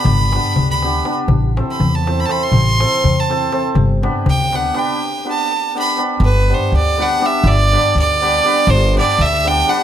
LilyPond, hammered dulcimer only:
\new Staff \with { instrumentName = "Hammered dulcimer" } { \time 5/8 \key g \major \tempo 4 = 122 r8 <b d' g' b'>8 r8 <b d' g' b'>8 <b d' g' b'>8 | r8 <c' e' a' c''>8 r8 <c' e' a' c''>8 <c' e' a' c''>8 | r8 <c' e' a' c''>8 r8 <c' e' a' c''>8 <c' e' a' c''>8 | r8 <b d' g' b'>8 r8 <b d' g' b'>8 <b d' g' b'>8 |
r8 <b d' g' b'>8 r8 <b d' g' b'>8 <b d' g' b'>8 | r8 <g b d' g' b'>8 r8 <g b d' g' b'>8 <g b d' g' b'>8 | r8 <g b d' g' b'>8 r8 <g b d' g' b'>8 <g b d' g' b'>8 | r8 <g b d' g' b'>8 r8 <g b d' g' b'>8 <g b d' g' b'>8 | }